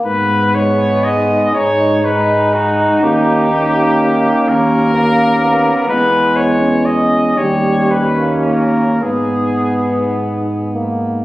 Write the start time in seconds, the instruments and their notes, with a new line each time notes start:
0.04 tuba G#2, flugelhorn B3, cornet B4
0.53 trombone G#3, euphonium D#4, cornet C#5
1.04 cornet D#5
1.54 tuba G#2, flugelhorn D#4, cornet C#5
2.02 trombone G#3, euphonium D#4, cornet B4
2.54 cornet F#4
3.02 tuba D#2, trombone A#3, euphonium C#4, cornet G4
3.51 trombone A#3, euphonium C#4
4.48 tuba D#2, flugelhorn C#4, cornet A#4
4.95 flugelhorn A#3, trombone A#3, euphonium C#4
5.40 flugelhorn B3
5.87 tuba E2, trombone G#3, euphonium B3, cornet B4
6.36 cornet C#5
6.60 euphonium C#4
6.85 cornet D#5
7.36 tuba D#2, trombone G3, flugelhorn C#4, euphonium D#4, cornet C#5
7.91 cornet B4
8.17 trombone A#3
8.46 cornet A#4
9.01 tuba G#2, flugelhorn B3, trombone B3, euphonium D#4, cornet G#4
10.74 trombone A#3